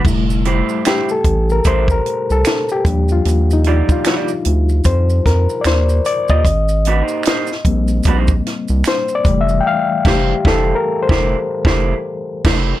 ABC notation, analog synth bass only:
X:1
M:4/4
L:1/16
Q:"Swing 16ths" 1/4=75
K:F
V:1 name="Analog synth bass" clef=bass
F,,,3 z3 A,,,2 A,,,2 z C,, z2 _E,,2 | _E,,3 z3 D,,2 F,,2 F,, z E,,2 z E,, | _A,,,3 z3 B,,,2 B,,,2 z C,, z2 F,,,2 | z2 F,,,2 F,,,2 z F,,,2 z F,,,2 z2 F,,,2 |]